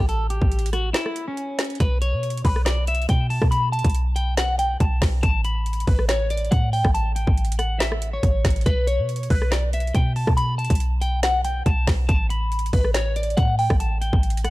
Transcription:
0.00 808-style bass A1
0.09 clean electric guitar A4, closed hi-hat
0.30 clean electric guitar G4, closed hi-hat
0.42 808-style bass A1, kick
0.52 closed hi-hat
0.59 closed hi-hat
0.66 closed hi-hat
0.73 clean electric guitar F#4, cross-stick, closed hi-hat
0.93 clean electric guitar E4, snare, closed hi-hat
1.06 cross-stick
1.16 closed hi-hat
1.28 clean electric guitar C#4
1.37 closed hi-hat
1.59 snare, closed hi-hat
1.64 closed hi-hat
1.70 closed hi-hat
1.75 closed hi-hat
1.80 808-style bass B1, clean electric guitar B4, kick, closed hi-hat
2.02 clean electric guitar C#5, closed hi-hat
2.13 808-style bass B2
2.23 closed hi-hat
2.30 closed hi-hat
2.37 closed hi-hat
2.45 808-style bass B1, clean electric guitar B4, kick, open hi-hat
2.56 cross-stick
2.65 clean electric guitar D5, snare, closed hi-hat
2.87 clean electric guitar E5, closed hi-hat
2.95 closed hi-hat
3.02 closed hi-hat
3.09 808-style bass B2, clean electric guitar G5, kick, closed hi-hat
3.30 clean electric guitar A5, open hi-hat
3.42 808-style bass B2, kick, cross-stick
3.51 clean electric guitar B5, closed hi-hat
3.72 clean electric guitar A5, closed hi-hat
3.79 closed hi-hat
3.84 808-style bass B1, kick, closed hi-hat
3.90 closed hi-hat
3.95 closed hi-hat
4.16 clean electric guitar G5, closed hi-hat
4.37 clean electric guitar F#5, snare, closed hi-hat
4.59 clean electric guitar G5, closed hi-hat
4.80 808-style bass B1, clean electric guitar A5, kick, closed hi-hat
5.02 808-style bass B1, kick, snare, open hi-hat
5.23 808-style bass A1, clean electric guitar A5, kick, closed hi-hat
5.45 clean electric guitar B5, closed hi-hat
5.66 closed hi-hat
5.73 closed hi-hat
5.80 closed hi-hat
5.87 808-style bass A1, clean electric guitar B4, kick, open hi-hat
5.99 cross-stick
6.08 clean electric guitar C#5, snare, closed hi-hat
6.30 clean electric guitar D5, closed hi-hat
6.38 closed hi-hat
6.45 closed hi-hat
6.51 808-style bass A2, clean electric guitar F#5, kick, closed hi-hat
6.73 clean electric guitar G5, open hi-hat
6.85 808-style bass A1, kick, cross-stick
6.94 clean electric guitar A5, closed hi-hat
7.16 clean electric guitar G5, closed hi-hat
7.27 808-style bass A1, kick
7.38 closed hi-hat
7.45 closed hi-hat
7.52 closed hi-hat
7.59 clean electric guitar F#5, cross-stick, closed hi-hat
7.79 clean electric guitar E5, snare, closed hi-hat
7.92 cross-stick
8.02 closed hi-hat
8.13 clean electric guitar C#5
8.23 808-style bass A1, kick, closed hi-hat
8.45 808-style bass A1, kick, snare, closed hi-hat
8.50 closed hi-hat
8.56 closed hi-hat
8.61 closed hi-hat
8.66 808-style bass B1, clean electric guitar B4, kick, closed hi-hat
8.87 clean electric guitar C#5, closed hi-hat
8.99 808-style bass B2
9.09 closed hi-hat
9.16 closed hi-hat
9.23 closed hi-hat
9.30 808-style bass B1, clean electric guitar B4, kick, open hi-hat
9.42 cross-stick
9.51 clean electric guitar D5, snare, closed hi-hat
9.73 clean electric guitar E5, closed hi-hat
9.80 closed hi-hat
9.87 closed hi-hat
9.95 808-style bass B2, clean electric guitar G5, kick, closed hi-hat
10.16 clean electric guitar A5, open hi-hat
10.27 808-style bass B2, kick, cross-stick
10.37 clean electric guitar B5, closed hi-hat
10.58 clean electric guitar A5, closed hi-hat
10.65 closed hi-hat
10.70 808-style bass B1, kick, closed hi-hat
10.75 closed hi-hat
10.80 closed hi-hat
11.01 clean electric guitar G5, closed hi-hat
11.23 clean electric guitar F#5, snare, closed hi-hat
11.45 clean electric guitar G5, closed hi-hat
11.66 808-style bass B1, clean electric guitar A5, kick, closed hi-hat
11.87 808-style bass B1, kick, snare, open hi-hat
12.09 808-style bass A1, clean electric guitar A5, kick, closed hi-hat
12.30 clean electric guitar B5, closed hi-hat
12.52 closed hi-hat
12.59 closed hi-hat
12.66 closed hi-hat
12.73 808-style bass A1, clean electric guitar B4, kick, open hi-hat
12.84 cross-stick
12.94 clean electric guitar C#5, snare, closed hi-hat
13.16 clean electric guitar D5, closed hi-hat
13.23 closed hi-hat
13.30 closed hi-hat
13.37 808-style bass A2, clean electric guitar F#5, kick, closed hi-hat
13.59 clean electric guitar G5, open hi-hat
13.70 808-style bass A1, kick, cross-stick
13.80 clean electric guitar A5, closed hi-hat
14.01 clean electric guitar G5, closed hi-hat
14.13 808-style bass A1, kick
14.23 closed hi-hat
14.30 closed hi-hat
14.37 closed hi-hat
14.44 clean electric guitar F#5, cross-stick, closed hi-hat

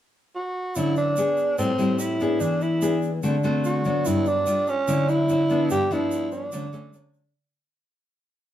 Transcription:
0.35 tenor saxophone F#4
0.75 nylon-string guitar D3 F#3 C#4 E4, tenor saxophone E4, shaker
0.96 tenor saxophone D4, shaker
1.16 nylon-string guitar B3 D4 G#4, shaker
1.37 shaker
1.58 nylon-string guitar A2 G3 C4 E4, tenor saxophone C4, shaker
1.78 nylon-string guitar G3 C4 E4, shaker
1.99 tenor saxophone E4, shaker
2.20 nylon-string guitar B3 D4 G#4, shaker
2.40 nylon-string guitar E3, tenor saxophone D4, shaker
2.61 tenor saxophone E4, shaker
2.81 nylon-string guitar B3 D4 G#4, shaker
3.02 shaker
3.23 nylon-string guitar D3 A3 C4 F#4, shaker
3.43 nylon-string guitar A3 C4 F#4, shaker
3.64 tenor saxophone F#4, shaker
3.84 nylon-string guitar F#3 B3 D4, shaker
4.05 nylon-string guitar G2, tenor saxophone E4, shaker
4.26 tenor saxophone D4, shaker
4.46 nylon-string guitar G3 D4 F4, shaker
4.67 tenor saxophone C#4, shaker
4.88 nylon-string guitar D3 F#3 C#4 E4, shaker
5.08 tenor saxophone E4, shaker
5.29 nylon-string guitar F#3 C#4 E4, shaker
5.50 nylon-string guitar F3 B3 D4, shaker
5.70 nylon-string guitar G2, tenor saxophone G4, shaker
5.91 nylon-string guitar F3 B3 D4, tenor saxophone E4, shaker
6.11 shaker
6.32 tenor saxophone D4, shaker
6.52 nylon-string guitar D3 F#3 A3 C#4, shaker
6.73 nylon-string guitar F#3 A3 C#4, shaker
6.93 nylon-string guitar F#3 A3 C#4, shaker
7.14 shaker

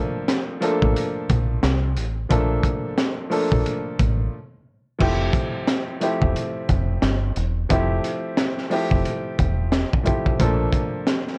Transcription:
Already playing: upright piano F3 A3 A#3 D4 A4
0.28 snare, closed hi-hat
0.60 upright piano F3 A3 A#3 D4 A4, closed hi-hat
0.82 fingered electric bass A1, kick
0.96 closed hi-hat
1.29 fingered electric bass A#1, kick, closed hi-hat
1.63 fingered electric bass C2, snare, closed hi-hat
1.97 fingered electric bass A1, closed hi-hat
2.29 fingered electric bass A#1, upright piano F3 A3 A#3 D4 A4, kick, closed hi-hat
2.63 kick, closed hi-hat
2.98 snare, closed hi-hat
3.30 upright piano F3 A3 A#3 D4 A4, open hi-hat
3.52 fingered electric bass A#1, kick
3.66 closed hi-hat
3.99 fingered electric bass A1, kick, closed hi-hat
4.99 fingered electric bass F1, upright piano F3 A3 C4 E4 G4, kick, crash
5.33 kick, closed hi-hat
5.67 snare, closed hi-hat
6.00 upright piano F3 A3 C4 E4 G4, closed hi-hat
6.22 fingered electric bass E1, kick
6.36 closed hi-hat
6.69 fingered electric bass F1, kick, closed hi-hat
7.02 fingered electric bass G1, snare, closed hi-hat
7.36 fingered electric bass E1, closed hi-hat
7.69 fingered electric bass F1, upright piano F3 A3 C4 E4 G4, kick, closed hi-hat
8.04 closed hi-hat
8.37 snare, closed hi-hat
8.58 snare
8.70 upright piano F3 A3 C4 E4 G4, open hi-hat
8.91 fingered electric bass F1, kick
9.05 closed hi-hat
9.39 fingered electric bass E1, kick, closed hi-hat
9.72 snare, closed hi-hat
9.93 kick
10.04 upright piano F3 A3 C4 E4 G4, kick, closed hi-hat
10.26 kick
10.39 fingered electric bass A#1, upright piano F3 A3 A#3 D4 A4, kick, closed hi-hat
10.72 kick, closed hi-hat
11.07 snare, closed hi-hat
11.28 snare

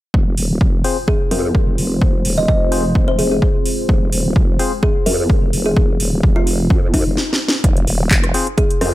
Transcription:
0.14 wobble bass F1, analog synth pad G#3 C4 F4 C5, kick
0.37 wobble bass D#1, open hi-hat
0.61 wobble bass F1, kick
0.84 synth stab C4 F4 G#4 C5, open hi-hat
1.08 kalimba G#4, kick
1.31 wobble bass F2, synth stab C4 F4 G#4 C5, kalimba A#4, open hi-hat
1.55 wobble bass F1, kick
1.78 wobble bass F1, open hi-hat
2.02 wobble bass F1, kick
2.25 wobble bass D#1, open hi-hat
2.38 kalimba D#5
2.48 wobble bass F1, kalimba D#5, kick
2.72 synth stab C4 F4 G#4 C5, open hi-hat
2.95 wobble bass F1, kick
3.08 kalimba C5
3.19 kalimba G#4, open hi-hat
3.31 kalimba G#4
3.42 kick
3.66 open hi-hat
3.89 wobble bass F1, kick
4.12 wobble bass D#1, open hi-hat
4.36 wobble bass F1, kick
4.59 synth stab C4 F4 G#4 C5, open hi-hat
4.83 kalimba G#4, kick
5.06 wobble bass F2, kalimba A#4, open hi-hat
5.30 wobble bass F1, kick
5.53 wobble bass F1, open hi-hat
5.66 kalimba G#4
5.76 wobble bass F1, kick
6.00 wobble bass D#1, open hi-hat
6.23 wobble bass F1, kick
6.36 kalimba F4
6.47 open hi-hat
6.70 wobble bass F2, kick
6.94 kalimba D#4, kick, open hi-hat
7.06 wobble bass F1
7.17 snare
7.33 snare
7.48 snare
7.64 wobble bass F1, kick, closed hi-hat
7.77 closed hi-hat
7.87 wobble bass D#1, open hi-hat
8.11 wobble bass F1, kick, clap, closed hi-hat
8.24 cross-stick, closed hi-hat
8.34 synth stab C4 F4 G#4 C5, open hi-hat
8.47 closed hi-hat
8.58 kalimba G#4, kick, closed hi-hat
8.71 closed hi-hat
8.81 wobble bass F2, synth stab C4 F4 G#4 C5, kalimba A#4, cross-stick, open hi-hat

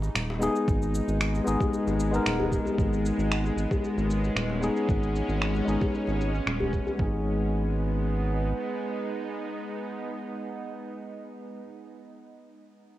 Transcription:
Already playing: synth drone G#3 B3 D#4
0.02 djembe slap, shaker
0.15 analog synth bass D#1, finger snap, shaker
0.30 djembe slap
0.39 tine electric piano G#3 B3 D#4 G#4, djembe slap, shaker
0.56 shaker
0.68 analog synth bass G#1, kick, shaker
0.82 shaker
0.95 shaker
1.08 analog synth bass G#1, shaker
1.21 finger snap, shaker
1.35 djembe slap, shaker
1.44 analog synth bass G#1, tine electric piano G#3 B3 D#4 G#4, shaker
1.61 kick, djembe bass, shaker
1.74 shaker
1.87 analog synth bass G#1, djembe slap, shaker
2.00 shaker
2.11 tine electric piano G#3 B3 D#4, shaker
2.16 tine electric piano A#4
2.26 analog synth bass D#1, finger snap, shaker
2.40 djembe bass
2.52 kick, djembe tone, shaker
2.65 djembe tone, djembe bass, shaker
2.78 analog synth bass G#1, kick, shaker
2.87 synth drone C#4
2.93 shaker
3.05 shaker
3.18 analog synth bass G#1, shaker
3.31 finger snap, shaker
3.44 djembe slap, shaker
3.56 analog synth bass G#1, shaker
3.71 kick, djembe bass, shaker
3.84 shaker
3.97 analog synth bass G#1, djembe tone, shaker
4.10 shaker
4.24 djembe slap, shaker
4.36 analog synth bass D#1, finger snap, shaker
4.50 djembe slap
4.60 tine electric piano G#3 B3 D#4 G#4, djembe slap, shaker
4.77 shaker
4.89 analog synth bass G#1, kick, shaker
5.03 shaker
5.16 shaker
5.29 analog synth bass G#1, shaker
5.42 finger snap, shaker
5.55 djembe slap, shaker
5.65 analog synth bass G#1, tine electric piano G#3 B3 D#4, shaker
5.69 tine electric piano G#4
5.81 kick, djembe bass, shaker
5.95 shaker
6.07 analog synth bass G#1, djembe slap, shaker
6.21 shaker
6.35 shaker
6.46 analog synth bass D#1, finger snap, shaker
6.60 djembe bass
6.73 kick, djembe tone, shaker
6.87 djembe tone, djembe bass, shaker
6.96 analog synth bass G#1, tine electric piano G#3 B3 D#4, synth drone G#3, kick
7.02 tine electric piano G#4
7.07 synth drone B3
7.15 synth drone D#4

